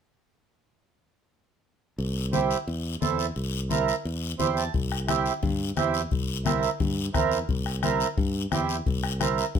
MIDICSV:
0, 0, Header, 1, 5, 480
1, 0, Start_track
1, 0, Tempo, 343840
1, 2775, Time_signature, 4, 2, 24, 8
1, 13393, End_track
2, 0, Start_track
2, 0, Title_t, "Accordion"
2, 0, Program_c, 0, 21
2, 3245, Note_on_c, 0, 60, 68
2, 3252, Note_on_c, 0, 64, 62
2, 3257, Note_on_c, 0, 67, 81
2, 3587, Note_off_c, 0, 60, 0
2, 3590, Note_off_c, 0, 64, 0
2, 3592, Note_off_c, 0, 67, 0
2, 4207, Note_on_c, 0, 60, 72
2, 4213, Note_on_c, 0, 64, 65
2, 4218, Note_on_c, 0, 69, 83
2, 4548, Note_off_c, 0, 60, 0
2, 4551, Note_off_c, 0, 64, 0
2, 4554, Note_off_c, 0, 69, 0
2, 5166, Note_on_c, 0, 60, 76
2, 5170, Note_on_c, 0, 64, 66
2, 5176, Note_on_c, 0, 70, 76
2, 5508, Note_off_c, 0, 60, 0
2, 5510, Note_off_c, 0, 64, 0
2, 5513, Note_off_c, 0, 70, 0
2, 6127, Note_on_c, 0, 60, 77
2, 6132, Note_on_c, 0, 64, 66
2, 6132, Note_on_c, 0, 72, 65
2, 6139, Note_on_c, 0, 67, 87
2, 6358, Note_off_c, 0, 72, 0
2, 6378, Note_on_c, 0, 81, 63
2, 6469, Note_off_c, 0, 60, 0
2, 6471, Note_off_c, 0, 64, 0
2, 6475, Note_off_c, 0, 67, 0
2, 6601, Note_off_c, 0, 81, 0
2, 7089, Note_on_c, 0, 60, 72
2, 7095, Note_on_c, 0, 64, 66
2, 7101, Note_on_c, 0, 67, 83
2, 7429, Note_off_c, 0, 60, 0
2, 7432, Note_off_c, 0, 64, 0
2, 7436, Note_off_c, 0, 67, 0
2, 8051, Note_on_c, 0, 60, 78
2, 8057, Note_on_c, 0, 64, 70
2, 8062, Note_on_c, 0, 67, 87
2, 8390, Note_off_c, 0, 60, 0
2, 8393, Note_off_c, 0, 64, 0
2, 8396, Note_off_c, 0, 67, 0
2, 9008, Note_on_c, 0, 60, 72
2, 9011, Note_on_c, 0, 64, 67
2, 9018, Note_on_c, 0, 70, 81
2, 9348, Note_off_c, 0, 60, 0
2, 9350, Note_off_c, 0, 64, 0
2, 9353, Note_off_c, 0, 70, 0
2, 9965, Note_on_c, 0, 60, 81
2, 9971, Note_on_c, 0, 64, 71
2, 9979, Note_on_c, 0, 70, 87
2, 10307, Note_off_c, 0, 60, 0
2, 10310, Note_off_c, 0, 64, 0
2, 10313, Note_off_c, 0, 70, 0
2, 10930, Note_on_c, 0, 60, 74
2, 10934, Note_on_c, 0, 64, 69
2, 10940, Note_on_c, 0, 70, 79
2, 11269, Note_off_c, 0, 60, 0
2, 11271, Note_off_c, 0, 64, 0
2, 11274, Note_off_c, 0, 70, 0
2, 11891, Note_on_c, 0, 60, 86
2, 11895, Note_on_c, 0, 64, 75
2, 11901, Note_on_c, 0, 67, 83
2, 12229, Note_off_c, 0, 60, 0
2, 12231, Note_off_c, 0, 64, 0
2, 12234, Note_off_c, 0, 67, 0
2, 12849, Note_on_c, 0, 60, 76
2, 12853, Note_on_c, 0, 64, 72
2, 12858, Note_on_c, 0, 70, 78
2, 13188, Note_off_c, 0, 60, 0
2, 13190, Note_off_c, 0, 64, 0
2, 13192, Note_off_c, 0, 70, 0
2, 13393, End_track
3, 0, Start_track
3, 0, Title_t, "Fingered electric bass"
3, 0, Program_c, 1, 33
3, 2769, Note_on_c, 1, 36, 85
3, 3540, Note_off_c, 1, 36, 0
3, 3734, Note_on_c, 1, 40, 89
3, 4119, Note_off_c, 1, 40, 0
3, 4214, Note_on_c, 1, 40, 87
3, 4599, Note_off_c, 1, 40, 0
3, 4692, Note_on_c, 1, 36, 91
3, 5463, Note_off_c, 1, 36, 0
3, 5658, Note_on_c, 1, 40, 89
3, 6042, Note_off_c, 1, 40, 0
3, 6137, Note_on_c, 1, 40, 88
3, 6522, Note_off_c, 1, 40, 0
3, 6619, Note_on_c, 1, 36, 79
3, 7386, Note_off_c, 1, 36, 0
3, 7579, Note_on_c, 1, 43, 97
3, 7963, Note_off_c, 1, 43, 0
3, 8054, Note_on_c, 1, 40, 85
3, 8439, Note_off_c, 1, 40, 0
3, 8539, Note_on_c, 1, 36, 83
3, 9306, Note_off_c, 1, 36, 0
3, 9496, Note_on_c, 1, 43, 98
3, 9880, Note_off_c, 1, 43, 0
3, 9973, Note_on_c, 1, 40, 88
3, 10358, Note_off_c, 1, 40, 0
3, 10453, Note_on_c, 1, 36, 84
3, 11222, Note_off_c, 1, 36, 0
3, 11411, Note_on_c, 1, 43, 99
3, 11797, Note_off_c, 1, 43, 0
3, 11889, Note_on_c, 1, 40, 88
3, 12276, Note_off_c, 1, 40, 0
3, 12373, Note_on_c, 1, 36, 84
3, 13142, Note_off_c, 1, 36, 0
3, 13334, Note_on_c, 1, 43, 96
3, 13393, Note_off_c, 1, 43, 0
3, 13393, End_track
4, 0, Start_track
4, 0, Title_t, "Two-headed folk drums"
4, 6620, Note_on_c, 9, 36, 76
4, 6759, Note_off_c, 9, 36, 0
4, 6865, Note_on_c, 9, 37, 67
4, 7004, Note_off_c, 9, 37, 0
4, 7098, Note_on_c, 9, 37, 86
4, 7237, Note_off_c, 9, 37, 0
4, 7579, Note_on_c, 9, 36, 82
4, 7719, Note_off_c, 9, 36, 0
4, 8057, Note_on_c, 9, 37, 86
4, 8197, Note_off_c, 9, 37, 0
4, 8538, Note_on_c, 9, 36, 82
4, 8677, Note_off_c, 9, 36, 0
4, 9024, Note_on_c, 9, 37, 80
4, 9164, Note_off_c, 9, 37, 0
4, 9495, Note_on_c, 9, 36, 77
4, 9634, Note_off_c, 9, 36, 0
4, 9973, Note_on_c, 9, 37, 85
4, 9974, Note_on_c, 9, 36, 73
4, 10113, Note_off_c, 9, 37, 0
4, 10114, Note_off_c, 9, 36, 0
4, 10452, Note_on_c, 9, 36, 81
4, 10592, Note_off_c, 9, 36, 0
4, 10693, Note_on_c, 9, 37, 68
4, 10833, Note_off_c, 9, 37, 0
4, 10927, Note_on_c, 9, 37, 86
4, 11067, Note_off_c, 9, 37, 0
4, 11411, Note_on_c, 9, 36, 83
4, 11551, Note_off_c, 9, 36, 0
4, 11890, Note_on_c, 9, 37, 84
4, 12030, Note_off_c, 9, 37, 0
4, 12373, Note_on_c, 9, 36, 82
4, 12512, Note_off_c, 9, 36, 0
4, 12613, Note_on_c, 9, 37, 73
4, 12752, Note_off_c, 9, 37, 0
4, 12852, Note_on_c, 9, 37, 83
4, 12992, Note_off_c, 9, 37, 0
4, 13333, Note_on_c, 9, 36, 87
4, 13393, Note_off_c, 9, 36, 0
4, 13393, End_track
5, 0, Start_track
5, 0, Title_t, "Drums"
5, 2773, Note_on_c, 9, 74, 64
5, 2912, Note_off_c, 9, 74, 0
5, 3254, Note_on_c, 9, 63, 77
5, 3257, Note_on_c, 9, 73, 59
5, 3394, Note_off_c, 9, 63, 0
5, 3397, Note_off_c, 9, 73, 0
5, 3499, Note_on_c, 9, 73, 60
5, 3638, Note_off_c, 9, 73, 0
5, 3738, Note_on_c, 9, 74, 59
5, 3878, Note_off_c, 9, 74, 0
5, 4215, Note_on_c, 9, 63, 75
5, 4217, Note_on_c, 9, 73, 64
5, 4354, Note_off_c, 9, 63, 0
5, 4356, Note_off_c, 9, 73, 0
5, 4455, Note_on_c, 9, 73, 65
5, 4595, Note_off_c, 9, 73, 0
5, 4692, Note_on_c, 9, 74, 63
5, 4832, Note_off_c, 9, 74, 0
5, 5172, Note_on_c, 9, 63, 75
5, 5177, Note_on_c, 9, 73, 64
5, 5311, Note_off_c, 9, 63, 0
5, 5317, Note_off_c, 9, 73, 0
5, 5421, Note_on_c, 9, 73, 60
5, 5560, Note_off_c, 9, 73, 0
5, 5661, Note_on_c, 9, 74, 63
5, 5800, Note_off_c, 9, 74, 0
5, 6135, Note_on_c, 9, 63, 77
5, 6138, Note_on_c, 9, 73, 64
5, 6274, Note_off_c, 9, 63, 0
5, 6278, Note_off_c, 9, 73, 0
5, 6380, Note_on_c, 9, 73, 65
5, 6519, Note_off_c, 9, 73, 0
5, 6619, Note_on_c, 9, 74, 70
5, 6758, Note_off_c, 9, 74, 0
5, 7099, Note_on_c, 9, 73, 69
5, 7101, Note_on_c, 9, 63, 80
5, 7238, Note_off_c, 9, 73, 0
5, 7241, Note_off_c, 9, 63, 0
5, 7339, Note_on_c, 9, 73, 60
5, 7479, Note_off_c, 9, 73, 0
5, 7576, Note_on_c, 9, 63, 70
5, 7576, Note_on_c, 9, 74, 62
5, 7715, Note_off_c, 9, 63, 0
5, 7715, Note_off_c, 9, 74, 0
5, 8050, Note_on_c, 9, 73, 63
5, 8055, Note_on_c, 9, 63, 74
5, 8190, Note_off_c, 9, 73, 0
5, 8194, Note_off_c, 9, 63, 0
5, 8293, Note_on_c, 9, 73, 67
5, 8432, Note_off_c, 9, 73, 0
5, 8533, Note_on_c, 9, 74, 71
5, 8673, Note_off_c, 9, 74, 0
5, 9013, Note_on_c, 9, 63, 86
5, 9014, Note_on_c, 9, 73, 70
5, 9153, Note_off_c, 9, 63, 0
5, 9154, Note_off_c, 9, 73, 0
5, 9254, Note_on_c, 9, 73, 61
5, 9393, Note_off_c, 9, 73, 0
5, 9493, Note_on_c, 9, 74, 66
5, 9497, Note_on_c, 9, 63, 68
5, 9632, Note_off_c, 9, 74, 0
5, 9636, Note_off_c, 9, 63, 0
5, 9977, Note_on_c, 9, 73, 68
5, 9978, Note_on_c, 9, 63, 78
5, 10117, Note_off_c, 9, 73, 0
5, 10118, Note_off_c, 9, 63, 0
5, 10213, Note_on_c, 9, 73, 70
5, 10352, Note_off_c, 9, 73, 0
5, 10453, Note_on_c, 9, 74, 67
5, 10593, Note_off_c, 9, 74, 0
5, 10932, Note_on_c, 9, 73, 70
5, 10937, Note_on_c, 9, 63, 78
5, 11072, Note_off_c, 9, 73, 0
5, 11077, Note_off_c, 9, 63, 0
5, 11172, Note_on_c, 9, 73, 65
5, 11312, Note_off_c, 9, 73, 0
5, 11414, Note_on_c, 9, 74, 65
5, 11554, Note_off_c, 9, 74, 0
5, 11892, Note_on_c, 9, 63, 80
5, 11894, Note_on_c, 9, 73, 67
5, 12032, Note_off_c, 9, 63, 0
5, 12033, Note_off_c, 9, 73, 0
5, 12133, Note_on_c, 9, 73, 71
5, 12273, Note_off_c, 9, 73, 0
5, 12375, Note_on_c, 9, 74, 66
5, 12515, Note_off_c, 9, 74, 0
5, 12854, Note_on_c, 9, 73, 71
5, 12855, Note_on_c, 9, 63, 77
5, 12994, Note_off_c, 9, 73, 0
5, 12995, Note_off_c, 9, 63, 0
5, 13096, Note_on_c, 9, 73, 68
5, 13235, Note_off_c, 9, 73, 0
5, 13333, Note_on_c, 9, 74, 63
5, 13393, Note_off_c, 9, 74, 0
5, 13393, End_track
0, 0, End_of_file